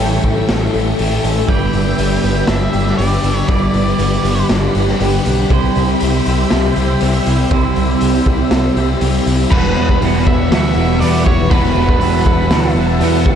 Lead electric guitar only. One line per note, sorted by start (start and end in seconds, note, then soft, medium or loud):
1.49 2.53 G5 medium
2.48 2.97 E5 medium
2.98 3.37 D5 medium
3.37 3.48 C#5 medium
3.49 4.46 D5 medium
9.51 9.98 B4 loud
10.27 10.51 E5 loud
10.52 11.00 E5 loud
11.00 11.25 D5 loud
11.25 11.52 C#5 medium
11.50 11.99 B4 medium
12.00 12.72 B4 medium